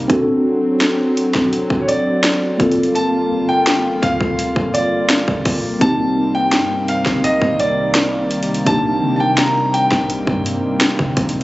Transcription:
0.08 1.31 D1 loud
0.08 2.57 F#3 medium
0.08 2.55 C4 medium
0.08 2.57 C4 medium
0.08 2.56 D4 medium
0.08 2.56 F#4 medium
0.08 kick loud
0.08 closed hi-hat medium
0.13 2.57 A4 medium
0.81 snare loud
0.81 closed hi-hat medium
1.17 closed hi-hat medium
1.35 1.69 D1 loud
1.35 kick medium
1.35 snare medium
1.53 closed hi-hat medium
1.70 2.56 D1 loud
1.70 kick loud
1.81 1.88 C#5 medium
1.88 2.99 D5 medium
1.88 closed hi-hat medium
2.24 snare loud
2.24 closed hi-hat medium
2.58 3.28 G1 loud
2.58 11.44 G3 medium
2.58 5.41 A#3 medium
2.58 11.44 A#3 medium
2.58 5.41 C4 medium
2.58 5.78 F4 medium
2.58 5.42 F4 medium
2.58 kick loud
2.58 closed hi-hat medium
2.63 5.43 A4 medium
2.71 closed hi-hat medium
2.83 closed hi-hat soft
2.95 3.50 A5 loud
2.95 closed hi-hat medium
3.31 3.86 G1 loud
3.49 4.04 G5 loud
3.66 snare loud
3.66 closed hi-hat medium
3.85 4.02 A1 loud
4.02 4.54 D2 loud
4.02 4.76 F5 loud
4.02 kick loud
4.02 closed hi-hat medium
4.21 kick medium
4.39 closed hi-hat medium
4.56 5.25 G1 loud
4.56 kick loud
4.74 5.84 D5 medium
4.74 closed hi-hat medium
5.10 snare loud
5.10 closed hi-hat medium
5.28 5.79 A#1 loud
5.28 kick medium
5.45 kick loud
5.45 open hi-hat medium
5.80 6.55 C2 loud
5.80 11.44 C3 medium
5.80 11.44 D#3 medium
5.80 8.62 A#3 medium
5.80 8.64 C4 medium
5.80 8.63 C4 medium
5.80 8.64 D#4 medium
5.80 6.31 A5 loud
5.80 kick loud
5.80 closed hi-hat medium
5.85 8.65 G4 medium
6.35 6.90 G5 loud
6.52 7.04 G2 medium
6.52 snare loud
6.52 closed hi-hat medium
6.88 7.25 F5 medium
6.88 closed hi-hat medium
7.06 7.41 C2 loud
7.06 kick medium
7.06 snare medium
7.24 7.57 D#5 loud
7.24 closed hi-hat medium
7.42 8.63 C2 loud
7.42 kick medium
7.60 8.70 D5 medium
7.60 closed hi-hat medium
7.95 snare loud
7.95 closed hi-hat medium
8.31 closed hi-hat medium
8.43 closed hi-hat medium
8.54 closed hi-hat soft
8.65 9.01 C2 loud
8.65 11.44 A#3 medium
8.65 11.44 C4 medium
8.65 11.44 D4 medium
8.65 11.44 D#4 medium
8.65 9.15 A5 loud
8.65 kick loud
8.65 closed hi-hat medium
8.70 11.44 G4 medium
9.03 9.88 C3 loud
9.16 9.39 G5 medium
9.16 9.21 A5 medium
9.37 9.71 A#5 loud
9.37 snare loud
9.37 closed hi-hat medium
9.74 11.13 G5 loud
9.74 closed hi-hat medium
9.92 10.26 C2 loud
9.92 kick medium
9.92 snare medium
10.10 closed hi-hat medium
10.27 10.62 G2 loud
10.27 kick loud
10.46 closed hi-hat medium
10.81 snare loud
10.81 closed hi-hat medium
10.99 11.16 C3 loud
10.99 kick loud
11.17 11.44 C2 loud
11.17 kick loud
11.17 closed hi-hat medium
11.17 open hi-hat medium
11.29 closed hi-hat medium

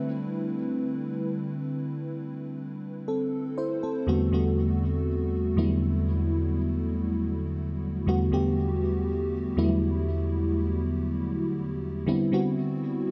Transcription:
0.00 1.25 D3 medium
0.00 1.28 G3 medium
0.00 1.25 A3 medium
0.00 1.25 C4 medium
0.00 4.10 D4 medium
0.00 1.26 E4 medium
0.00 4.09 B4 medium
3.08 3.56 C4 medium
3.08 3.55 A4 medium
3.58 3.82 E4 medium
3.58 3.81 C5 medium
3.83 4.31 C4 medium
3.83 4.30 A4 medium
4.07 4.28 E2 medium
4.07 4.28 D3 medium
4.07 4.29 G3 medium
4.07 4.29 A3 medium
4.07 4.29 B3 medium
4.07 4.29 F#4 medium
4.32 5.37 E2 medium
4.32 5.37 D3 medium
4.32 5.37 G3 medium
4.32 5.38 A3 medium
4.32 5.38 B3 medium
4.32 5.38 F#4 medium
5.56 7.25 E2 medium
5.56 7.25 D3 medium
5.56 5.64 F#3 medium
5.56 7.25 A3 medium
5.56 7.25 B3 medium
5.56 7.26 E4 medium
5.64 7.28 G3 medium
8.06 8.28 E2 medium
8.06 8.28 D3 medium
8.06 8.28 G3 medium
8.06 8.29 A3 medium
8.06 8.29 B3 medium
8.06 8.29 F#4 loud
8.32 9.37 E2 medium
8.32 9.37 D3 medium
8.32 9.37 G3 medium
8.32 9.37 A3 medium
8.32 9.38 B3 medium
8.32 9.38 G4 loud
9.56 11.25 E2 medium
9.56 11.25 D3 medium
9.56 9.64 F#3 medium
9.56 11.25 A3 medium
9.56 11.25 B3 medium
9.56 11.26 E4 loud
9.64 11.28 G3 medium
12.07 12.28 D3 medium
12.07 12.28 G3 medium
12.07 12.29 B3 medium
12.07 12.29 C4 medium
12.07 12.29 E4 medium
12.32 13.11 D3 medium
12.32 13.11 G3 medium
12.32 13.11 B3 medium
12.32 13.11 C4 medium
12.32 13.11 F#4 medium

